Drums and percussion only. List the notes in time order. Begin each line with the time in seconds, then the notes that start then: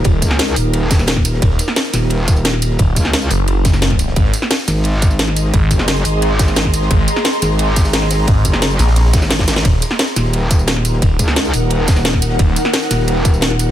0.04 kick, closed hi-hat, ride
0.22 kick, closed hi-hat, ride, tambourine
0.30 snare
0.39 snare, closed hi-hat, ride
0.48 tambourine
0.56 open hi-hat, ride, tambourine
0.73 closed hi-hat, ride
0.91 kick, snare, closed hi-hat, open hi-hat, tambourine
0.99 snare, tambourine
1.07 snare, closed hi-hat, ride
1.16 kick, snare
1.25 closed hi-hat, ride, tambourine
1.34 snare
1.42 kick, closed hi-hat, ride
1.51 snare
1.59 closed hi-hat, ride, tambourine
1.68 snare
1.76 snare, closed hi-hat, open hi-hat
1.85 snare, tambourine
1.93 snare, closed hi-hat, ride, tambourine
2.02 snare
2.10 closed hi-hat, ride
2.28 kick, closed hi-hat, ride, tambourine
2.36 tambourine
2.45 snare, closed hi-hat, ride
2.54 snare
2.62 closed hi-hat, ride, tambourine
2.70 snare
2.79 kick, closed hi-hat, ride
2.96 kick, closed hi-hat, ride, tambourine
3.05 snare
3.13 snare, closed hi-hat, ride
3.22 tambourine
3.31 open hi-hat, ride, tambourine
3.48 closed hi-hat, ride
3.65 kick, snare, closed hi-hat, ride, tambourine
3.73 snare, tambourine
3.82 snare, closed hi-hat, ride
3.91 kick, snare
3.99 closed hi-hat, ride, tambourine
4.07 snare
4.16 kick, closed hi-hat, ride
4.24 snare
4.33 closed hi-hat, ride, tambourine
4.42 snare
4.51 snare, closed hi-hat, open hi-hat
4.59 snare, tambourine
4.68 snare, closed hi-hat, ride, tambourine
4.76 snare
4.84 closed hi-hat, ride
5.02 kick, closed hi-hat, ride, tambourine
5.11 tambourine
5.19 snare, closed hi-hat, ride
5.28 snare
5.36 closed hi-hat, ride, tambourine
5.45 snare
5.54 kick, closed hi-hat, ride
5.71 kick, closed hi-hat, ride, tambourine
5.78 snare
5.88 snare, closed hi-hat, ride
5.96 tambourine
6.05 open hi-hat, ride, tambourine
6.22 closed hi-hat, ride
6.39 kick, snare, closed hi-hat, open hi-hat, tambourine
6.48 snare, tambourine
6.56 snare, closed hi-hat, ride
6.65 kick, snare
6.74 closed hi-hat, ride, tambourine
6.82 snare
6.91 kick, closed hi-hat, ride
6.98 snare
7.08 closed hi-hat, ride, tambourine
7.16 snare
7.24 snare, closed hi-hat, open hi-hat
7.34 snare, tambourine
7.42 snare, closed hi-hat, ride, tambourine
7.51 snare
7.59 closed hi-hat, ride
7.76 kick, snare, closed hi-hat, open hi-hat, tambourine
7.85 snare, open hi-hat, tambourine
7.93 snare, closed hi-hat, open hi-hat
8.02 snare, open hi-hat
8.11 snare, closed hi-hat, open hi-hat, tambourine
8.19 snare
8.27 kick, closed hi-hat, ride
8.45 kick, closed hi-hat, ride, tambourine
8.53 snare
8.62 snare, closed hi-hat, ride
8.71 tambourine
8.79 snare, open hi-hat, tambourine
8.87 snare, open hi-hat
8.96 snare, closed hi-hat, open hi-hat
9.05 snare, open hi-hat
9.13 kick, snare, closed hi-hat, open hi-hat, tambourine
9.22 snare, open hi-hat, tambourine
9.30 snare, closed hi-hat, open hi-hat
9.39 kick, snare, open hi-hat
9.48 snare, closed hi-hat, open hi-hat, tambourine
9.56 snare, open hi-hat
9.65 kick, closed hi-hat, ride
9.73 snare
9.82 closed hi-hat, ride, tambourine
9.90 snare
9.99 snare, closed hi-hat, open hi-hat
10.08 snare, tambourine
10.16 snare, closed hi-hat, ride, tambourine
10.25 snare
10.33 closed hi-hat, ride
10.51 kick, closed hi-hat, ride, tambourine
10.59 tambourine
10.67 snare, closed hi-hat, ride
10.76 snare
10.85 closed hi-hat, ride, tambourine
10.93 snare
11.02 kick, closed hi-hat, ride
11.19 kick, closed hi-hat, ride, tambourine
11.28 snare
11.36 snare, closed hi-hat, ride
11.45 tambourine
11.54 open hi-hat, ride, tambourine
11.70 closed hi-hat, ride
11.87 kick, snare, closed hi-hat, open hi-hat, tambourine
11.96 snare, tambourine
12.05 snare, closed hi-hat, ride
12.14 kick, snare
12.22 closed hi-hat, ride, tambourine
12.30 snare
12.39 kick, closed hi-hat, ride
12.48 snare
12.56 closed hi-hat, ride, tambourine
12.65 snare
12.73 snare, closed hi-hat, open hi-hat
12.82 snare, tambourine
12.91 snare, closed hi-hat, ride, tambourine
13.00 snare
13.08 closed hi-hat, ride
13.25 kick, closed hi-hat, ride, tambourine
13.34 tambourine
13.41 snare, closed hi-hat, ride
13.51 snare
13.59 closed hi-hat, ride, tambourine
13.68 snare